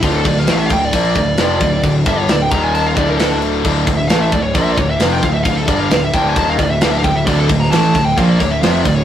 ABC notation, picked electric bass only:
X:1
M:4/4
L:1/8
Q:1/4=133
K:Dm
V:1 name="Picked electric bass" clef=bass
D,,, D,,, A,,, D,,, B,,, D,,, F,,, D,,, | D,,, G,,, D,,, _E,,,2 D,,,3 | D,,, D,,, A,,, D,,, B,,, D,,, F,,, D,,, | D,,, G,,, D,,, D,,, _E,,, D,,, D,,, D,,, |
D,,, D,,, A,,, D,,, B,,, D,,, F,,, D,,, |]